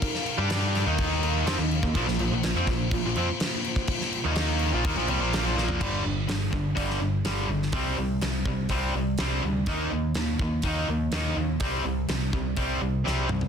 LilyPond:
<<
  \new Staff \with { instrumentName = "Analog synth pad" } { \time 4/4 \key g \minor \tempo 4 = 124 <ees' bes' f''>8. <g d' a'>4 <ees' bes' f''>2~ <ees' bes' f''>16 | <bes f' c''>1~ | <bes f' c''>8. <ees' bes' f''>4 <bes f' c''>2~ <bes f' c''>16 | r1 |
r1 | r1 | r1 | }
  \new Staff \with { instrumentName = "Distorted electric guitar" } { \clef bass \time 4/4 \key g \minor r8. <g d' g'>4 <ees bes ees'>4~ <ees bes ees'>16 <f c'>16 <ees bes>8 <ees bes>16 | <bes, f>16 <bes, f>16 <bes, f>16 <bes, f>16 <bes, f>16 <f c'>16 <bes, f>8 <bes, f>16 <bes, f>16 <f c'>16 r4 r16 | r8. <ees bes ees'>4 <bes, f>16 <ees bes>16 <bes, f>16 <c g>16 <bes, f bes>8 <bes, f>16 <bes, f bes>8 | <g, d g>8 <g, d>8 <g, d>8 <g, d>8 <g, d g>8 <g, d>8 <g, d g>8 <g, d>8 |
<c g c'>8 <c g>8 <c g>8 <c g>8 <c g c'>8 <c g>8 <c g c'>8 <c g>8 | <ees bes ees'>8 <ees bes>8 <ees bes>8 <ees bes>8 <ees bes ees'>8 <ees bes>8 <ees bes ees'>8 <ees bes>8 | <c g c'>8 <c g>8 <c g>8 <c g>8 <c g c'>8 <c g>8 <c g c'>8 <c g>8 | }
  \new Staff \with { instrumentName = "Distorted electric guitar" } { \clef bass \time 4/4 \key g \minor r8. <g d' g'>4 <ees bes ees'>4~ <ees bes ees'>16 <f c'>16 <ees bes>8 <ees bes>16 | <bes, f>16 <bes, f>16 <bes, f>16 <bes, f>16 <bes, f>16 <f c'>16 <bes, f>8 <bes, f>16 <bes, f>16 <f c'>16 r4 r16 | r8. <ees bes ees'>4 <bes, f>16 <ees bes>16 <bes, f>16 <c g>16 <bes, f bes>8 <bes, f>16 <bes, f bes>8 | <g, d g>8 <g, d>8 <g, d>8 <g, d>8 <g, d g>8 <g, d>8 <g, d g>8 <g, d>8 |
<c g c'>8 <c g>8 <c g>8 <c g>8 <c g c'>8 <c g>8 <c g c'>8 <c g>8 | <ees bes ees'>8 <ees bes>8 <ees bes>8 <ees bes>8 <ees bes ees'>8 <ees bes>8 <ees bes ees'>8 <ees bes>8 | <c g c'>8 <c g>8 <c g>8 <c g>8 <c g c'>8 <c g>8 <c g c'>8 <c g>8 | }
  \new Staff \with { instrumentName = "Picked electric bass" } { \clef bass \time 4/4 \key g \minor r8. g,4 ees,4~ ees,16 f,16 ees,8 ees,16 | bes,,16 bes,,16 bes,,16 bes,,16 bes,,16 f,16 bes,,8 bes,,16 bes,,16 f,16 r4 r16 | r8. ees,4 bes,,16 ees,16 bes,,16 c,16 bes,,8 bes,,16 bes,,8 | g,,8 g,,8 g,,8 g,,8 g,,8 g,,8 g,,8 g,,8 |
c,8 c,8 c,8 c,8 c,8 c,8 c,8 d,8 | ees,8 ees,8 ees,8 ees,8 ees,8 ees,8 ees,8 ees,8 | c,8 c,8 c,8 c,8 c,8 c,8 c,8 c,8 | }
  \new DrumStaff \with { instrumentName = "Drums" } \drummode { \time 4/4 <cymc bd>16 sn16 cymc8 <cymc sn>8 <cymc sn>8 <cymc bd>8 cymc8 <cymc sn>8 cymc16 bd16 | <cymc bd>16 sn16 cymc8 <cymc sn>8 <cymc bd sn>8 <cymc bd>8 cymc8 <cymc sn>8 cymc16 bd16 | <cymc bd>16 sn16 cymc8 <cymc sn>8 cymc8 <cymc bd>8 cymc8 <cymc sn>8 sn16 tomfh16 | <cymc bd>4 <hho sn>8 bd8 <hho bd>16 sn8. <hho sn>8. sn16 |
<hho bd>4 <hho sn>8 bd8 <hho bd>4 <hho sn>4 | <hho bd>4 <hho sn>8 bd8 <hho bd>4 <hho sn>4 | <hho bd>4 <hho sn>8 bd8 <hho bd>4 sn8 toml16 tomfh16 | }
>>